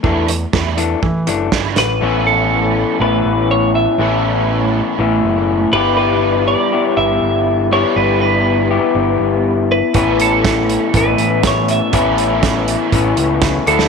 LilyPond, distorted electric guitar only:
\new Staff \with { instrumentName = "Distorted electric guitar" } { \time 4/4 \key a \mixolydian \tempo 4 = 121 <e a d' e'>8 r8 <e a d' e'>8 r4. <e a d' e'>8 r8 | <a, a cis' e' a'>1 | <a, a cis' e' a'>2.~ <a, a cis' e' a'>8 <g b e' b'>8~ | <g b e' b'>2.~ <g b e' b'>8 <g b e' b'>8~ |
<g b e' b'>2.~ <g b e' b'>8 r8 | <a, a cis' e' a'>1 | <a, a cis' e' a'>2.~ <a, a cis' e' a'>8 <d d' e' a'>8 | }